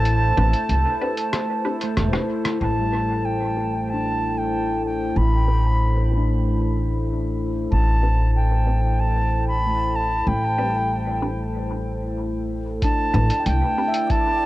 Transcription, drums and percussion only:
0, 0, Header, 1, 2, 480
1, 0, Start_track
1, 0, Key_signature, 0, "minor"
1, 0, Tempo, 638298
1, 41, Time_signature, 4, 2, 24, 8
1, 10872, End_track
2, 0, Start_track
2, 0, Title_t, "Drums"
2, 39, Note_on_c, 9, 42, 44
2, 115, Note_off_c, 9, 42, 0
2, 401, Note_on_c, 9, 42, 58
2, 476, Note_off_c, 9, 42, 0
2, 522, Note_on_c, 9, 42, 41
2, 597, Note_off_c, 9, 42, 0
2, 882, Note_on_c, 9, 42, 53
2, 958, Note_off_c, 9, 42, 0
2, 1000, Note_on_c, 9, 37, 90
2, 1000, Note_on_c, 9, 42, 43
2, 1075, Note_off_c, 9, 37, 0
2, 1075, Note_off_c, 9, 42, 0
2, 1362, Note_on_c, 9, 42, 54
2, 1437, Note_off_c, 9, 42, 0
2, 1481, Note_on_c, 9, 37, 62
2, 1481, Note_on_c, 9, 42, 44
2, 1556, Note_off_c, 9, 37, 0
2, 1556, Note_off_c, 9, 42, 0
2, 1604, Note_on_c, 9, 37, 62
2, 1679, Note_off_c, 9, 37, 0
2, 1842, Note_on_c, 9, 37, 85
2, 1842, Note_on_c, 9, 42, 52
2, 1917, Note_off_c, 9, 37, 0
2, 1917, Note_off_c, 9, 42, 0
2, 9641, Note_on_c, 9, 42, 41
2, 9642, Note_on_c, 9, 36, 108
2, 9716, Note_off_c, 9, 42, 0
2, 9717, Note_off_c, 9, 36, 0
2, 10002, Note_on_c, 9, 42, 56
2, 10077, Note_off_c, 9, 42, 0
2, 10122, Note_on_c, 9, 42, 42
2, 10198, Note_off_c, 9, 42, 0
2, 10482, Note_on_c, 9, 42, 52
2, 10557, Note_off_c, 9, 42, 0
2, 10602, Note_on_c, 9, 36, 109
2, 10603, Note_on_c, 9, 42, 43
2, 10677, Note_off_c, 9, 36, 0
2, 10678, Note_off_c, 9, 42, 0
2, 10872, End_track
0, 0, End_of_file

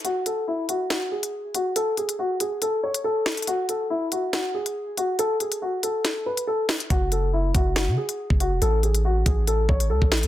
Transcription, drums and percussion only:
0, 0, Header, 1, 2, 480
1, 0, Start_track
1, 0, Key_signature, 3, "minor"
1, 0, Tempo, 428571
1, 52, Time_signature, 4, 2, 24, 8
1, 11507, End_track
2, 0, Start_track
2, 0, Title_t, "Drums"
2, 51, Note_on_c, 9, 42, 83
2, 163, Note_off_c, 9, 42, 0
2, 291, Note_on_c, 9, 42, 74
2, 403, Note_off_c, 9, 42, 0
2, 771, Note_on_c, 9, 42, 83
2, 883, Note_off_c, 9, 42, 0
2, 1011, Note_on_c, 9, 38, 119
2, 1011, Note_on_c, 9, 42, 76
2, 1123, Note_off_c, 9, 38, 0
2, 1123, Note_off_c, 9, 42, 0
2, 1378, Note_on_c, 9, 42, 85
2, 1490, Note_off_c, 9, 42, 0
2, 1731, Note_on_c, 9, 42, 82
2, 1843, Note_off_c, 9, 42, 0
2, 1970, Note_on_c, 9, 42, 83
2, 2082, Note_off_c, 9, 42, 0
2, 2211, Note_on_c, 9, 42, 46
2, 2323, Note_off_c, 9, 42, 0
2, 2338, Note_on_c, 9, 42, 75
2, 2450, Note_off_c, 9, 42, 0
2, 2691, Note_on_c, 9, 42, 82
2, 2803, Note_off_c, 9, 42, 0
2, 2931, Note_on_c, 9, 42, 77
2, 3043, Note_off_c, 9, 42, 0
2, 3298, Note_on_c, 9, 42, 84
2, 3410, Note_off_c, 9, 42, 0
2, 3651, Note_on_c, 9, 38, 123
2, 3651, Note_on_c, 9, 42, 47
2, 3715, Note_off_c, 9, 42, 0
2, 3715, Note_on_c, 9, 42, 58
2, 3763, Note_off_c, 9, 38, 0
2, 3778, Note_off_c, 9, 42, 0
2, 3778, Note_on_c, 9, 42, 67
2, 3835, Note_off_c, 9, 42, 0
2, 3835, Note_on_c, 9, 42, 77
2, 3891, Note_off_c, 9, 42, 0
2, 3891, Note_on_c, 9, 42, 83
2, 4003, Note_off_c, 9, 42, 0
2, 4131, Note_on_c, 9, 42, 72
2, 4243, Note_off_c, 9, 42, 0
2, 4612, Note_on_c, 9, 42, 78
2, 4724, Note_off_c, 9, 42, 0
2, 4851, Note_on_c, 9, 38, 125
2, 4851, Note_on_c, 9, 42, 79
2, 4963, Note_off_c, 9, 38, 0
2, 4963, Note_off_c, 9, 42, 0
2, 5219, Note_on_c, 9, 42, 86
2, 5331, Note_off_c, 9, 42, 0
2, 5572, Note_on_c, 9, 42, 83
2, 5684, Note_off_c, 9, 42, 0
2, 5811, Note_on_c, 9, 42, 86
2, 5923, Note_off_c, 9, 42, 0
2, 6052, Note_on_c, 9, 42, 63
2, 6164, Note_off_c, 9, 42, 0
2, 6178, Note_on_c, 9, 42, 64
2, 6290, Note_off_c, 9, 42, 0
2, 6532, Note_on_c, 9, 42, 81
2, 6644, Note_off_c, 9, 42, 0
2, 6771, Note_on_c, 9, 38, 72
2, 6772, Note_on_c, 9, 42, 75
2, 6883, Note_off_c, 9, 38, 0
2, 6884, Note_off_c, 9, 42, 0
2, 7139, Note_on_c, 9, 42, 83
2, 7251, Note_off_c, 9, 42, 0
2, 7491, Note_on_c, 9, 38, 121
2, 7491, Note_on_c, 9, 42, 49
2, 7491, Note_on_c, 9, 46, 58
2, 7603, Note_off_c, 9, 38, 0
2, 7603, Note_off_c, 9, 42, 0
2, 7603, Note_off_c, 9, 46, 0
2, 7619, Note_on_c, 9, 42, 77
2, 7731, Note_off_c, 9, 42, 0
2, 7731, Note_on_c, 9, 36, 122
2, 7732, Note_on_c, 9, 42, 85
2, 7843, Note_off_c, 9, 36, 0
2, 7844, Note_off_c, 9, 42, 0
2, 7972, Note_on_c, 9, 42, 75
2, 8084, Note_off_c, 9, 42, 0
2, 8451, Note_on_c, 9, 42, 82
2, 8452, Note_on_c, 9, 36, 94
2, 8563, Note_off_c, 9, 42, 0
2, 8564, Note_off_c, 9, 36, 0
2, 8691, Note_on_c, 9, 38, 122
2, 8691, Note_on_c, 9, 42, 79
2, 8803, Note_off_c, 9, 38, 0
2, 8803, Note_off_c, 9, 42, 0
2, 9059, Note_on_c, 9, 42, 88
2, 9171, Note_off_c, 9, 42, 0
2, 9299, Note_on_c, 9, 36, 88
2, 9411, Note_off_c, 9, 36, 0
2, 9412, Note_on_c, 9, 42, 85
2, 9524, Note_off_c, 9, 42, 0
2, 9651, Note_on_c, 9, 42, 87
2, 9763, Note_off_c, 9, 42, 0
2, 9892, Note_on_c, 9, 42, 46
2, 10004, Note_off_c, 9, 42, 0
2, 10019, Note_on_c, 9, 42, 73
2, 10131, Note_off_c, 9, 42, 0
2, 10372, Note_on_c, 9, 36, 97
2, 10372, Note_on_c, 9, 42, 80
2, 10484, Note_off_c, 9, 36, 0
2, 10484, Note_off_c, 9, 42, 0
2, 10611, Note_on_c, 9, 42, 76
2, 10723, Note_off_c, 9, 42, 0
2, 10851, Note_on_c, 9, 36, 90
2, 10963, Note_off_c, 9, 36, 0
2, 10978, Note_on_c, 9, 42, 87
2, 11090, Note_off_c, 9, 42, 0
2, 11219, Note_on_c, 9, 36, 87
2, 11331, Note_off_c, 9, 36, 0
2, 11331, Note_on_c, 9, 38, 126
2, 11331, Note_on_c, 9, 42, 47
2, 11394, Note_off_c, 9, 42, 0
2, 11394, Note_on_c, 9, 42, 59
2, 11443, Note_off_c, 9, 38, 0
2, 11458, Note_off_c, 9, 42, 0
2, 11458, Note_on_c, 9, 42, 68
2, 11507, Note_off_c, 9, 42, 0
2, 11507, End_track
0, 0, End_of_file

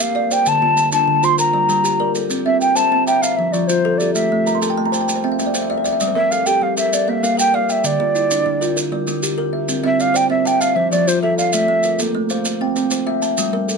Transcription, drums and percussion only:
0, 0, Header, 1, 2, 480
1, 0, Start_track
1, 0, Tempo, 307535
1, 727, Time_signature, 12, 3, 24, 8
1, 21502, End_track
2, 0, Start_track
2, 0, Title_t, "Drums"
2, 0, Note_on_c, 9, 70, 81
2, 150, Note_off_c, 9, 70, 0
2, 484, Note_on_c, 9, 70, 58
2, 640, Note_off_c, 9, 70, 0
2, 716, Note_on_c, 9, 70, 70
2, 872, Note_off_c, 9, 70, 0
2, 1204, Note_on_c, 9, 70, 57
2, 1360, Note_off_c, 9, 70, 0
2, 1437, Note_on_c, 9, 70, 71
2, 1593, Note_off_c, 9, 70, 0
2, 1921, Note_on_c, 9, 70, 59
2, 2077, Note_off_c, 9, 70, 0
2, 2159, Note_on_c, 9, 70, 74
2, 2315, Note_off_c, 9, 70, 0
2, 2641, Note_on_c, 9, 70, 55
2, 2797, Note_off_c, 9, 70, 0
2, 2882, Note_on_c, 9, 70, 72
2, 3038, Note_off_c, 9, 70, 0
2, 3355, Note_on_c, 9, 70, 53
2, 3511, Note_off_c, 9, 70, 0
2, 3595, Note_on_c, 9, 70, 70
2, 3751, Note_off_c, 9, 70, 0
2, 4075, Note_on_c, 9, 70, 50
2, 4231, Note_off_c, 9, 70, 0
2, 4309, Note_on_c, 9, 70, 60
2, 4465, Note_off_c, 9, 70, 0
2, 4797, Note_on_c, 9, 70, 59
2, 4953, Note_off_c, 9, 70, 0
2, 5043, Note_on_c, 9, 70, 69
2, 5199, Note_off_c, 9, 70, 0
2, 5519, Note_on_c, 9, 70, 53
2, 5675, Note_off_c, 9, 70, 0
2, 5760, Note_on_c, 9, 70, 71
2, 5917, Note_off_c, 9, 70, 0
2, 6244, Note_on_c, 9, 70, 53
2, 6400, Note_off_c, 9, 70, 0
2, 6481, Note_on_c, 9, 70, 74
2, 6637, Note_off_c, 9, 70, 0
2, 6973, Note_on_c, 9, 70, 52
2, 7129, Note_off_c, 9, 70, 0
2, 7213, Note_on_c, 9, 70, 72
2, 7369, Note_off_c, 9, 70, 0
2, 7703, Note_on_c, 9, 70, 60
2, 7860, Note_off_c, 9, 70, 0
2, 7937, Note_on_c, 9, 70, 72
2, 8093, Note_off_c, 9, 70, 0
2, 8416, Note_on_c, 9, 70, 51
2, 8572, Note_off_c, 9, 70, 0
2, 8654, Note_on_c, 9, 70, 76
2, 8810, Note_off_c, 9, 70, 0
2, 9133, Note_on_c, 9, 70, 55
2, 9289, Note_off_c, 9, 70, 0
2, 9368, Note_on_c, 9, 70, 71
2, 9524, Note_off_c, 9, 70, 0
2, 9859, Note_on_c, 9, 70, 59
2, 10015, Note_off_c, 9, 70, 0
2, 10088, Note_on_c, 9, 70, 68
2, 10244, Note_off_c, 9, 70, 0
2, 10569, Note_on_c, 9, 70, 64
2, 10725, Note_off_c, 9, 70, 0
2, 10817, Note_on_c, 9, 70, 78
2, 10974, Note_off_c, 9, 70, 0
2, 11296, Note_on_c, 9, 70, 58
2, 11452, Note_off_c, 9, 70, 0
2, 11535, Note_on_c, 9, 70, 80
2, 11691, Note_off_c, 9, 70, 0
2, 12007, Note_on_c, 9, 70, 60
2, 12163, Note_off_c, 9, 70, 0
2, 12240, Note_on_c, 9, 70, 76
2, 12396, Note_off_c, 9, 70, 0
2, 12725, Note_on_c, 9, 70, 53
2, 12882, Note_off_c, 9, 70, 0
2, 12968, Note_on_c, 9, 70, 77
2, 13124, Note_off_c, 9, 70, 0
2, 13454, Note_on_c, 9, 70, 63
2, 13610, Note_off_c, 9, 70, 0
2, 13690, Note_on_c, 9, 70, 76
2, 13846, Note_off_c, 9, 70, 0
2, 14160, Note_on_c, 9, 70, 57
2, 14316, Note_off_c, 9, 70, 0
2, 14405, Note_on_c, 9, 70, 78
2, 14561, Note_off_c, 9, 70, 0
2, 15117, Note_on_c, 9, 70, 67
2, 15273, Note_off_c, 9, 70, 0
2, 15606, Note_on_c, 9, 70, 57
2, 15762, Note_off_c, 9, 70, 0
2, 15849, Note_on_c, 9, 70, 72
2, 16005, Note_off_c, 9, 70, 0
2, 16337, Note_on_c, 9, 70, 67
2, 16494, Note_off_c, 9, 70, 0
2, 16565, Note_on_c, 9, 70, 80
2, 16721, Note_off_c, 9, 70, 0
2, 17048, Note_on_c, 9, 70, 62
2, 17204, Note_off_c, 9, 70, 0
2, 17293, Note_on_c, 9, 70, 81
2, 17450, Note_off_c, 9, 70, 0
2, 17770, Note_on_c, 9, 70, 59
2, 17926, Note_off_c, 9, 70, 0
2, 17992, Note_on_c, 9, 70, 85
2, 18148, Note_off_c, 9, 70, 0
2, 18466, Note_on_c, 9, 70, 63
2, 18622, Note_off_c, 9, 70, 0
2, 18716, Note_on_c, 9, 70, 76
2, 18872, Note_off_c, 9, 70, 0
2, 19192, Note_on_c, 9, 70, 63
2, 19348, Note_off_c, 9, 70, 0
2, 19432, Note_on_c, 9, 70, 81
2, 19588, Note_off_c, 9, 70, 0
2, 19915, Note_on_c, 9, 70, 57
2, 20072, Note_off_c, 9, 70, 0
2, 20146, Note_on_c, 9, 70, 82
2, 20302, Note_off_c, 9, 70, 0
2, 20636, Note_on_c, 9, 70, 54
2, 20792, Note_off_c, 9, 70, 0
2, 20875, Note_on_c, 9, 70, 74
2, 21031, Note_off_c, 9, 70, 0
2, 21363, Note_on_c, 9, 70, 54
2, 21502, Note_off_c, 9, 70, 0
2, 21502, End_track
0, 0, End_of_file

